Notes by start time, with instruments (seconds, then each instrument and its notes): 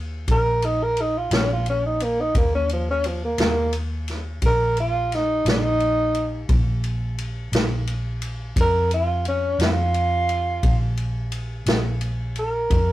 Already playing: fingered electric bass D#2
0.28 fingered electric bass A#1, tenor saxophone A#4, kick, ride
0.62 tenor saxophone D#4, ride
0.83 tenor saxophone A#4
0.97 ride
1.01 tenor saxophone D#4
1.18 tenor saxophone F4
1.31 fingered electric bass A#1, tenor saxophone C#4, snare, ride
1.53 tenor saxophone F4
1.66 tenor saxophone C#4, ride
1.86 tenor saxophone D#4
2.00 tenor saxophone A#3, ride
2.20 tenor saxophone D#4
2.35 fingered electric bass D#2, tenor saxophone A#3, kick, ride
2.55 tenor saxophone C#4
2.69 tenor saxophone F3, ride
2.90 tenor saxophone C#4
3.04 tenor saxophone F3, ride
3.24 tenor saxophone A#3
3.38 fingered electric bass D#2, tenor saxophone A#3, snare, ride
3.73 ride
4.08 snare, ride
4.42 fingered electric bass A#1, tenor saxophone A#4, kick, ride
4.77 tenor saxophone F4, ride
5.12 tenor saxophone D#4, snare, ride
5.45 fingered electric bass A#1, snare, ride
5.49 tenor saxophone D#4
5.80 ride
6.15 ride
6.49 fingered electric bass A#1, kick, ride
6.84 ride
7.18 ride
7.52 fingered electric bass A#1, snare, ride
7.87 ride
8.22 ride
8.56 fingered electric bass F2, kick, ride
8.60 tenor saxophone A#4
8.91 tenor saxophone F4, ride
9.25 tenor saxophone C#4, ride
9.59 fingered electric bass F2, snare, ride
9.63 tenor saxophone F4
9.94 ride
10.29 ride
10.63 fingered electric bass A#1, kick, ride
10.97 ride
11.32 ride
11.66 fingered electric bass A#1, snare, ride
12.01 ride
12.36 tenor saxophone A#4, ride
12.70 fingered electric bass F2, kick, ride